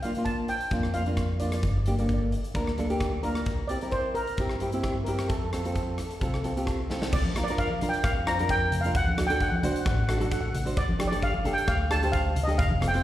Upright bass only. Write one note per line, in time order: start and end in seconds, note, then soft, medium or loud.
0.00 0.52 A#1 medium
0.71 1.64 F2 medium
1.63 2.35 G1 medium
2.54 3.47 D2 medium
3.47 4.19 C2 medium
4.38 5.30 G2 medium
5.30 6.02 F2 medium
6.22 6.94 C2 medium
7.13 7.85 A#1 loud
8.04 8.95 F2 loud
8.95 9.67 D2 loud
9.85 10.77 A1 medium
10.77 11.49 G1 loud
11.68 12.61 D2 medium
12.59 13.03 F1 loud